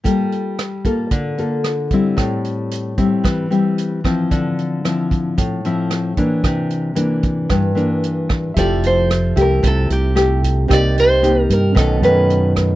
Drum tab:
HH |xxxxxxxx|xxxxxxxx|xxxxxxxx|xxxxxxxx|
SD |--r---r-|r---r--r|--r---r-|r---r--r|
BD |o--oo--o|o--oo--o|o--oo--o|o--oo--o|

HH |xxxxxxxx|xxxxxxxx|
SD |--r---r-|r---r--r|
BD |o--oo--o|o--oo--o|